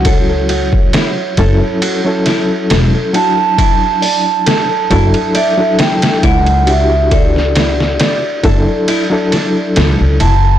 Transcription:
<<
  \new Staff \with { instrumentName = "Vibraphone" } { \time 4/4 \key d \major \tempo 4 = 68 cis''2. r8 a''8~ | a''2 e''8 g''8 fis''8 e''8 | d''2. r8 a''8 | }
  \new Staff \with { instrumentName = "Nylon-string guitar" } { \time 4/4 \key d \major a'16 r16 fis'16 r16 e'8 a'16 r16 fis'16 r16 e'8 a'16 r16 fis'16 r16 | e'8 d''16 r16 a'16 r16 e'8 d''16 r16 a'16 r16 e'8 d''16 r16 | a'16 r16 e'8 d''16 r16 a'16 r16 e'8 d''16 r16 a'16 r16 e'8 | }
  \new Staff \with { instrumentName = "Reed electric piano" } { \time 4/4 \key d \major <fis cis' e' fis'>4. <fis cis' e' a'>8. <fis cis' e' a'>4~ <fis cis' e' a'>16 <fis d' e'>8~ | <fis d' e'>4. <fis d' e' a'>8. <fis d' e' a'>4~ <fis d' e' a'>16 <d' e' fis' g'>8~ | <d' e' fis' g'>4. <fis d' e' a'>8. <fis d' e' a'>4~ <fis d' e' a'>16 r8 | }
  \new Staff \with { instrumentName = "Upright bass" } { \clef bass \time 4/4 \key d \major cis,4 r8 fis,,16 r4 r16 e,,16 r8. | r4. fis,,16 r4 r16 cis,4~ | cis,4 r8 fis,,16 r4 r16 cis,16 cis,16 fis,,8 | }
  \new DrumStaff \with { instrumentName = "Drums" } \drummode { \time 4/4 <bd cymr>8 cymr16 bd16 <cymr sn>8 <bd cymr>8 cymr8 <cymr sn>8 <cymr sn>8 cymr8 | <bd cymr>8 hho8 <cymr sn>8 <bd cymr>16 cymr16 cymr8 <cymr sn>16 <cymr sn>16 <bd cymr>16 cymr16 cymr8 | <bd cymr>16 sn16 <cymr sn>16 sn16 <cymr sn>8 <bd cymr>8 cymr8 <cymr sn>8 <cymr sn>8 cymr8 | }
>>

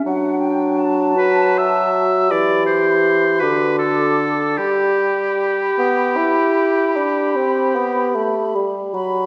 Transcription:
<<
  \new Staff \with { instrumentName = "Flute section" } { \time 12/8 \key g \major \tempo 4. = 51 fis''8 g''8 a''2 b''4. d'''4. | b''1~ b''4. b''8 | }
  \new Staff \with { instrumentName = "Oboe" } { \time 12/8 \key g \major r4. b'8 e''4 d''8 c''4 b'8 a'4 | g'1~ g'8 r4. | }
  \new Staff \with { instrumentName = "Clarinet" } { \time 12/8 \key g \major d'4. fis'4. g'4. fis'4 r8 | g'1~ g'4. r8 | }
  \new Staff \with { instrumentName = "Bassoon" } { \clef bass \time 12/8 \key g \major fis2. e4. d4. | g4. b8 e'4 d'8 c'8 b8 a8 g8 fis8 | }
>>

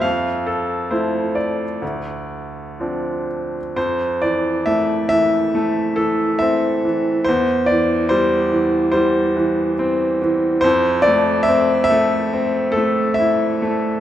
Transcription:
<<
  \new Staff \with { instrumentName = "Grand piano" } { \time 4/4 \key f \major \tempo 4 = 70 f''8 a'8 c''8 d''2 r8 | c''8 d''8 e''8 e''4 a'8 e''4 | c''8 d''8 c''4 c''4 r4 | c''8 d''8 e''8 e''4 a'8 e''4 | }
  \new Staff \with { instrumentName = "Grand piano" } { \clef bass \time 4/4 \key f \major f,4 <f a e'>4 d,4 <f c' d'>4 | f,8 e8 a8 e8 a8 e8 c'8 e8 | e,8 e8 g8 e8 g8 e8 c'8 e8 | f,8 a8 c'8 a8 c'8 a8 e'8 a8 | }
>>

